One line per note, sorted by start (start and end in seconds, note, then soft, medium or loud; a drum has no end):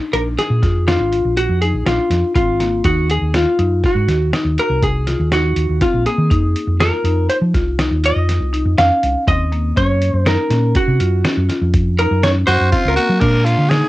0.13 0.35 A#1 medium
0.13 0.43 D4 medium
0.13 0.20 A#4 medium
0.13 closed hi-hat medium
0.39 0.84 G#4 medium
0.39 snare soft
0.39 closed hi-hat medium
0.50 0.61 A#2 medium
0.62 0.96 F2 medium
0.62 0.77 F4 medium
0.62 kick medium
0.62 snare soft
0.62 closed hi-hat medium
0.87 1.02 D4 medium
0.87 1.37 F4 medium
0.87 snare loud
0.87 closed hi-hat medium
1.00 1.22 G#1 medium
1.12 1.42 F4 medium
1.12 closed hi-hat soft
1.25 1.46 A#1 medium
1.37 1.60 F#4 medium
1.37 closed hi-hat medium
1.49 1.71 F2 medium
1.61 1.76 D#4 medium
1.61 1.86 G#4 medium
1.61 closed hi-hat medium
1.74 1.85 A#1 medium
1.86 1.97 A#1 medium
1.86 2.16 D4 medium
1.86 2.32 F4 medium
1.86 snare medium
1.86 closed hi-hat medium
2.10 2.21 F2 medium
2.10 snare soft
2.10 closed hi-hat medium
2.35 2.79 G#1 medium
2.35 2.50 C4 medium
2.35 2.85 F4 medium
2.35 kick loud
2.35 closed hi-hat medium
2.60 2.75 A#3 medium
2.60 snare soft
2.60 closed hi-hat medium
2.84 3.18 D#2 medium
2.84 3.14 D#4 medium
2.84 3.10 F#4 medium
2.84 kick loud
2.84 closed hi-hat medium
3.10 3.35 G#4 medium
3.10 closed hi-hat medium
3.21 3.44 D#2 medium
3.34 3.49 F4 medium
3.34 3.85 F4 medium
3.34 snare loud
3.34 closed hi-hat medium
3.59 3.81 F#2 medium
3.59 3.89 D#4 medium
3.59 closed hi-hat medium
3.84 4.31 F#4 medium
3.84 kick loud
3.84 snare soft
3.84 closed hi-hat medium
3.95 4.06 G#2 medium
4.08 4.30 D#2 medium
4.08 4.23 F#4 medium
4.08 snare soft
4.08 closed hi-hat medium
4.33 4.48 D#4 medium
4.33 snare loud
4.33 closed hi-hat medium
4.45 4.56 D#2 medium
4.58 4.88 F#4 medium
4.58 4.82 A#4 medium
4.58 closed hi-hat soft
4.70 5.14 C2 medium
4.83 5.29 G#4 medium
4.83 kick loud
4.83 closed hi-hat medium
5.07 5.22 F4 medium
5.07 snare soft
5.07 closed hi-hat medium
5.20 5.53 D#2 medium
5.32 5.62 D#4 medium
5.32 5.82 F#4 medium
5.32 snare loud
5.32 closed hi-hat medium
5.56 5.67 D#2 medium
5.56 closed hi-hat medium
5.69 5.80 D#2 medium
5.81 5.96 C4 medium
5.81 6.06 F4 medium
5.81 kick loud
5.81 snare soft
5.81 closed hi-hat medium
5.94 6.05 A#1 medium
6.06 6.21 A#3 medium
6.06 6.76 G#4 medium
6.06 closed hi-hat medium
6.18 6.29 D#3 medium
6.30 6.53 F2 loud
6.30 6.60 D#4 medium
6.30 kick loud
6.30 closed hi-hat medium
6.56 closed hi-hat medium
6.67 6.90 F2 medium
6.80 6.95 F4 medium
6.80 7.29 A#4 medium
6.80 snare loud
6.80 closed hi-hat medium
7.04 7.27 F2 medium
7.04 7.35 D#4 medium
7.04 closed hi-hat medium
7.30 7.36 C5 medium
7.30 closed hi-hat medium
7.42 7.53 F3 medium
7.54 7.88 C2 medium
7.54 7.69 F4 medium
7.54 kick medium
7.54 snare soft
7.54 closed hi-hat medium
7.79 7.94 D#4 medium
7.79 snare loud
7.79 closed hi-hat medium
7.91 8.13 D#2 medium
8.04 8.34 F4 medium
8.04 8.78 D#5 loud
8.04 closed hi-hat medium
8.16 8.38 F2 medium
8.29 snare soft
8.29 closed hi-hat medium
8.40 8.63 C2 medium
8.53 8.68 D#4 medium
8.53 closed hi-hat medium
8.66 8.77 F2 loud
8.78 8.89 F2 medium
8.78 9.08 C#4 medium
8.78 9.24 F5 loud
8.78 snare loud
8.78 closed hi-hat medium
9.03 9.14 C2 medium
9.03 closed hi-hat medium
9.27 9.71 D#2 medium
9.27 9.42 C4 medium
9.27 9.77 D#5 medium
9.27 kick loud
9.27 closed hi-hat medium
9.52 9.67 A#3 medium
9.52 closed hi-hat medium
9.77 10.10 F#2 loud
9.77 10.06 C#4 loud
9.77 10.14 C#5 loud
9.77 kick loud
9.77 closed hi-hat medium
10.02 closed hi-hat medium
10.13 10.36 F#2 medium
10.13 10.28 C5 loud
10.26 10.41 D#4 medium
10.26 10.77 A#4 medium
10.26 snare loud
10.26 closed hi-hat medium
10.50 10.72 A#2 medium
10.50 10.80 C#4 medium
10.50 snare soft
10.50 closed hi-hat medium
10.75 11.46 F#4 medium
10.75 kick loud
10.75 closed hi-hat medium
10.88 10.99 C3 loud
11.00 11.22 F#2 medium
11.00 11.15 F4 medium
11.00 closed hi-hat medium
11.24 11.39 C#4 medium
11.24 snare loud
11.24 closed hi-hat medium
11.37 11.48 F#2 medium
11.49 11.79 F4 medium
11.49 snare soft
11.49 closed hi-hat medium
11.61 12.05 F2 loud
11.74 kick loud
11.74 closed hi-hat medium
11.99 12.14 D#4 medium
11.99 12.24 A#4 medium
11.99 closed hi-hat medium
12.11 12.44 F#2 medium
12.23 12.53 C#4 medium
12.23 12.30 C#5 loud
12.23 snare loud
12.23 closed hi-hat medium
12.47 12.59 F#2 medium
12.47 12.71 F#4 loud
12.47 12.90 C5 loud
12.47 snare soft
12.47 closed hi-hat medium
12.60 12.71 F#2 medium
12.72 12.87 C4 medium
12.72 12.95 F4 loud
12.72 kick loud
12.72 snare soft
12.72 closed hi-hat medium
12.85 12.96 C#2 medium
12.85 13.19 A#4 medium
12.96 13.12 A#3 medium
12.96 13.22 F#4 loud
12.96 closed hi-hat medium
13.09 13.20 F#3 medium
13.20 13.89 A#2 medium
13.20 13.55 A#2 medium
13.20 13.89 G#3 soft
13.20 13.89 D4 medium
13.20 13.51 D4 medium
13.20 13.47 A#4 medium
13.20 13.89 A#4 soft
13.20 kick loud
13.20 closed hi-hat medium
13.20 crash medium
13.45 13.71 F4 medium
13.45 closed hi-hat medium
13.58 13.80 D3 medium
13.69 13.86 D#4 medium
13.69 13.89 G#4 medium
13.69 snare loud
13.69 closed hi-hat medium